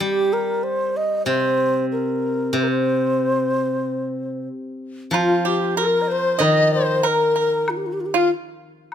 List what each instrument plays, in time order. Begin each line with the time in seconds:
0.00 guzheng G3, xiao G4
0.33 xiao A#4
0.63 xiao C5
0.97 xiao D#5
1.26 guzheng C3, xiao C5
1.92 xiao A#4
2.53 guzheng C3, xiao C5
2.63 xiao A#4
2.68 xiao C5
5.11 guzheng F3, dizi F4, pipa F4, high woodblock
5.15 xiao F4
5.45 pipa G4, xiao G4
5.76 dizi A#4, pipa A#4, xiao A#4
6.02 dizi D#5
6.08 dizi C5, xiao C5
6.39 guzheng D#3, pipa D#5, dizi D#5, high woodblock
6.43 xiao D#5
6.73 dizi C5, xiao C5
7.03 pipa A#4, dizi A#4, xiao A#4, high woodblock
7.36 pipa A#4, xiao A#4
7.68 xiao F4, high woodblock
7.77 xiao G4
7.86 xiao F4
7.93 xiao G4
8.01 xiao F4
8.06 xiao G4
8.14 pipa F4, dizi F4, xiao F4